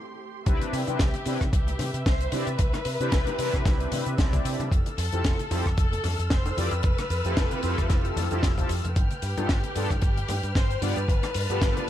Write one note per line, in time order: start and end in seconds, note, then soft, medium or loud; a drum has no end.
0.00 0.42 A3 medium
0.00 0.42 G4 medium
0.00 0.42 C6 medium
0.46 0.57 C2 loud
0.46 0.82 C4 loud
0.46 0.82 D4 medium
0.46 0.82 E4 medium
0.46 0.82 G4 medium
0.46 4.67 B4 medium
0.46 0.82 B4 loud
0.46 4.67 E5 medium
0.46 kick loud
0.46 closed hi-hat medium
0.46 high bongo medium
0.46 cabasa medium
0.61 closed hi-hat medium
0.61 high conga medium
0.61 cabasa soft
0.73 0.84 C3 medium
0.73 1.49 G4 loud
0.73 open hi-hat loud
0.73 cabasa medium
0.87 0.96 C3 medium
0.87 1.08 C4 medium
0.87 1.08 D4 medium
0.87 1.08 E4 medium
0.87 1.09 G4 medium
0.87 1.09 B4 medium
0.87 closed hi-hat medium
0.87 high bongo medium
0.87 cabasa soft
0.99 1.10 C2 medium
0.99 kick loud
0.99 snare loud
0.99 closed hi-hat loud
0.99 cabasa medium
1.14 closed hi-hat medium
1.14 high conga medium
1.14 cabasa soft
1.26 1.37 C3 medium
1.26 1.41 C4 medium
1.26 1.41 D4 medium
1.26 1.41 E4 medium
1.26 1.41 G4 medium
1.26 1.41 B4 loud
1.26 open hi-hat loud
1.26 cabasa medium
1.41 1.50 C3 medium
1.41 kick medium
1.41 cross-stick medium
1.41 closed hi-hat medium
1.41 high bongo medium
1.41 cabasa soft
1.53 1.73 C2 medium
1.53 2.02 G4 loud
1.53 kick loud
1.53 closed hi-hat loud
1.53 cabasa medium
1.67 closed hi-hat medium
1.67 high conga medium
1.79 1.90 C3 medium
1.79 open hi-hat loud
1.79 high bongo medium
1.79 low conga medium
1.79 cabasa medium
1.94 2.02 C3 medium
1.94 closed hi-hat medium
1.94 cabasa soft
2.06 2.26 C2 medium
2.06 2.33 C5 loud
2.06 kick loud
2.06 snare loud
2.06 closed hi-hat medium
2.06 cabasa medium
2.21 closed hi-hat medium
2.21 cabasa medium
2.32 2.43 C3 medium
2.32 2.47 C4 loud
2.32 2.47 D4 medium
2.32 2.47 E4 medium
2.32 2.47 G4 medium
2.32 4.45 B4 loud
2.32 2.47 D5 loud
2.32 open hi-hat loud
2.32 high bongo medium
2.32 high conga medium
2.32 cabasa medium
2.47 2.56 C3 medium
2.47 closed hi-hat medium
2.47 cabasa soft
2.59 2.70 C2 loud
2.59 kick loud
2.59 closed hi-hat loud
2.59 cabasa medium
2.73 cross-stick medium
2.73 closed hi-hat medium
2.73 high bongo medium
2.73 high conga medium
2.73 cabasa soft
2.85 2.96 C3 medium
2.85 open hi-hat loud
2.85 cabasa medium
3.00 3.09 C3 medium
3.00 3.36 C4 loud
3.00 3.36 D4 medium
3.00 3.36 E4 medium
3.00 3.36 G4 medium
3.00 3.36 B4 loud
3.00 closed hi-hat medium
3.00 cabasa soft
3.12 3.23 C2 loud
3.12 kick loud
3.12 snare loud
3.12 closed hi-hat loud
3.12 cabasa medium
3.27 closed hi-hat medium
3.27 high bongo medium
3.27 high conga medium
3.27 cabasa soft
3.38 3.49 C3 medium
3.38 4.15 C4 loud
3.38 4.15 D4 medium
3.38 4.16 E4 medium
3.38 4.16 G4 medium
3.38 4.16 B4 loud
3.38 open hi-hat loud
3.38 cabasa medium
3.53 3.62 C3 medium
3.53 kick medium
3.53 cross-stick medium
3.53 closed hi-hat soft
3.53 cabasa soft
3.65 3.85 C2 medium
3.65 kick loud
3.65 snare medium
3.65 closed hi-hat medium
3.65 high bongo medium
3.65 cabasa medium
3.80 closed hi-hat medium
3.92 4.02 C3 medium
3.92 open hi-hat loud
3.92 low conga medium
3.92 cabasa medium
4.06 4.15 C3 medium
4.06 closed hi-hat medium
4.06 cabasa medium
4.17 4.38 C2 medium
4.17 4.70 C4 medium
4.17 4.70 D4 medium
4.17 4.70 E4 medium
4.17 4.70 G4 medium
4.17 4.70 D5 medium
4.17 kick loud
4.17 snare loud
4.17 closed hi-hat loud
4.17 high bongo medium
4.17 cabasa medium
4.33 kick medium
4.33 closed hi-hat medium
4.33 high conga medium
4.33 cabasa soft
4.45 4.55 C3 medium
4.45 open hi-hat loud
4.45 cabasa medium
4.60 4.68 C3 medium
4.60 closed hi-hat medium
4.60 high bongo medium
4.60 high conga medium
4.60 cabasa soft
4.71 4.82 F1 loud
4.71 8.92 A4 medium
4.71 8.92 E6 medium
4.71 8.92 F6 medium
4.71 kick loud
4.71 closed hi-hat medium
4.71 cabasa medium
4.86 closed hi-hat medium
4.86 high conga medium
4.86 cabasa soft
4.98 5.08 F2 medium
4.98 5.74 A4 loud
4.98 open hi-hat loud
4.98 cabasa medium
5.12 5.21 F2 medium
5.12 5.33 C4 medium
5.12 5.33 E4 medium
5.12 5.33 F4 medium
5.12 5.33 G4 medium
5.12 5.33 A4 medium
5.12 closed hi-hat medium
5.12 high bongo soft
5.12 cabasa medium
5.24 5.35 F1 loud
5.24 kick loud
5.24 snare loud
5.24 closed hi-hat loud
5.24 cabasa medium
5.39 closed hi-hat soft
5.39 high conga medium
5.39 cabasa medium
5.50 5.62 F2 medium
5.50 5.65 C4 medium
5.50 5.66 E4 medium
5.50 5.66 F4 medium
5.50 5.66 G4 medium
5.50 5.66 A4 loud
5.50 open hi-hat loud
5.50 high bongo medium
5.50 cabasa medium
5.66 5.74 F2 medium
5.66 kick medium
5.66 cross-stick medium
5.66 closed hi-hat medium
5.66 cabasa soft
5.77 5.97 F1 medium
5.77 6.27 A4 loud
5.77 kick loud
5.77 closed hi-hat medium
5.77 cabasa medium
5.92 closed hi-hat medium
5.92 high conga medium
6.04 6.15 F2 medium
6.04 open hi-hat loud
6.04 high bongo medium
6.04 low conga medium
6.04 cabasa medium
6.19 6.27 F2 medium
6.19 closed hi-hat medium
6.19 cabasa medium
6.30 6.51 F1 medium
6.30 6.57 C5 loud
6.30 kick loud
6.30 snare loud
6.30 closed hi-hat medium
6.30 cabasa medium
6.46 closed hi-hat medium
6.46 high bongo medium
6.46 cabasa soft
6.57 6.68 F2 medium
6.57 6.72 C4 medium
6.57 6.72 E4 medium
6.57 6.72 F4 medium
6.57 6.72 G4 medium
6.57 8.70 B4 loud
6.57 6.72 D5 loud
6.57 open hi-hat loud
6.57 high conga medium
6.57 cabasa medium
6.71 6.80 F2 medium
6.71 closed hi-hat medium
6.71 cabasa medium
6.83 6.94 F1 loud
6.83 kick loud
6.83 closed hi-hat medium
6.83 cabasa medium
6.98 cross-stick medium
6.98 closed hi-hat medium
6.98 high bongo medium
6.98 high conga medium
6.98 cabasa medium
7.10 7.21 F2 medium
7.10 open hi-hat medium
7.10 cabasa medium
7.25 7.33 F2 medium
7.25 7.60 C4 loud
7.25 7.61 E4 medium
7.25 7.61 F4 medium
7.25 7.61 G4 medium
7.25 7.61 A4 loud
7.25 closed hi-hat medium
7.25 cabasa soft
7.37 7.48 F1 loud
7.37 kick loud
7.37 snare loud
7.37 closed hi-hat loud
7.37 high bongo medium
7.37 cabasa medium
7.51 closed hi-hat medium
7.51 high conga medium
7.51 cabasa soft
7.63 7.74 F2 medium
7.63 8.28 C4 medium
7.63 8.28 E4 medium
7.63 8.28 F4 medium
7.63 8.29 G4 medium
7.63 8.29 A4 loud
7.63 open hi-hat loud
7.63 cabasa medium
7.78 7.87 F2 medium
7.78 kick medium
7.78 cross-stick medium
7.78 closed hi-hat medium
7.78 cabasa medium
7.89 8.10 F1 medium
7.89 kick loud
7.89 snare medium
7.89 closed hi-hat loud
7.89 high bongo soft
7.89 cabasa medium
8.05 closed hi-hat medium
8.16 8.27 F2 medium
8.16 open hi-hat loud
8.16 low conga medium
8.16 cabasa medium
8.31 8.40 F2 medium
8.31 8.52 C4 loud
8.31 8.52 E4 medium
8.31 8.52 F4 medium
8.31 8.52 G4 medium
8.31 8.52 A4 loud
8.31 closed hi-hat medium
8.31 high bongo medium
8.31 cabasa soft
8.43 8.63 F1 medium
8.43 kick loud
8.43 snare loud
8.43 closed hi-hat loud
8.43 cabasa medium
8.57 8.69 C4 medium
8.57 8.69 E4 medium
8.57 8.70 F4 medium
8.57 8.70 G4 medium
8.57 8.70 A4 medium
8.57 kick medium
8.57 closed hi-hat medium
8.57 high conga medium
8.57 cabasa medium
8.69 8.80 F2 medium
8.69 open hi-hat loud
8.69 cabasa medium
8.84 8.93 F2 medium
8.84 closed hi-hat medium
8.84 high bongo soft
8.84 high conga medium
8.84 cabasa soft
8.96 9.07 G1 loud
8.96 11.90 B4 medium
8.96 11.06 G5 medium
8.96 11.90 F6 medium
8.96 kick loud
8.96 closed hi-hat loud
8.96 high bongo medium
8.96 cabasa medium
9.11 closed hi-hat medium
9.11 high conga medium
9.11 cabasa soft
9.22 9.33 G2 medium
9.22 9.98 G4 loud
9.22 open hi-hat loud
9.22 cabasa medium
9.37 9.46 G2 medium
9.37 9.58 B3 medium
9.37 9.58 D4 medium
9.37 9.58 F4 medium
9.37 9.58 G4 medium
9.37 9.58 A4 medium
9.37 closed hi-hat medium
9.37 high bongo medium
9.37 cabasa soft
9.49 9.60 G1 loud
9.49 kick loud
9.49 snare loud
9.49 closed hi-hat medium
9.49 cabasa medium
9.64 closed hi-hat medium
9.64 high conga medium
9.64 cabasa soft
9.75 9.86 G2 medium
9.75 9.90 B3 medium
9.75 9.90 D4 medium
9.75 9.90 F4 medium
9.75 9.91 G4 medium
9.75 9.91 A4 loud
9.75 open hi-hat loud
9.75 cabasa medium
9.90 9.99 G2 medium
9.90 kick medium
9.90 cross-stick medium
9.90 closed hi-hat medium
9.90 high bongo medium
9.90 cabasa soft
10.02 10.22 G1 medium
10.02 10.52 G4 loud
10.02 kick loud
10.02 closed hi-hat medium
10.02 cabasa medium
10.17 closed hi-hat medium
10.17 high conga medium
10.29 10.39 G2 medium
10.29 open hi-hat loud
10.29 high bongo medium
10.29 low conga medium
10.29 cabasa medium
10.43 10.52 G2 medium
10.43 closed hi-hat medium
10.43 cabasa soft
10.55 10.75 G1 medium
10.55 10.82 C5 loud
10.55 kick loud
10.55 snare loud
10.55 closed hi-hat medium
10.55 cabasa medium
10.71 closed hi-hat medium
10.71 cabasa medium
10.81 10.92 G2 medium
10.81 10.96 B3 loud
10.81 10.96 D4 medium
10.81 10.97 F4 medium
10.81 10.97 G4 medium
10.81 11.90 B4 loud
10.81 10.97 D5 loud
10.81 open hi-hat loud
10.81 high bongo medium
10.81 high conga medium
10.81 cabasa medium
10.96 11.05 G2 medium
10.96 closed hi-hat medium
10.96 cabasa medium
11.08 11.19 G1 loud
11.08 11.90 A5 medium
11.08 kick loud
11.08 closed hi-hat medium
11.08 cabasa medium
11.23 cross-stick medium
11.23 closed hi-hat medium
11.23 high bongo medium
11.23 high conga medium
11.23 cabasa medium
11.34 11.46 G2 medium
11.34 open hi-hat loud
11.34 cabasa medium
11.49 11.58 G2 medium
11.49 11.85 B3 loud
11.49 11.85 D4 medium
11.49 11.85 F4 medium
11.49 11.85 G4 medium
11.49 11.85 A4 loud
11.49 closed hi-hat medium
11.49 cabasa medium
11.61 11.72 G1 loud
11.61 kick loud
11.61 snare loud
11.61 closed hi-hat loud
11.61 cabasa medium
11.77 closed hi-hat medium
11.77 high bongo medium
11.77 high conga medium
11.77 cabasa medium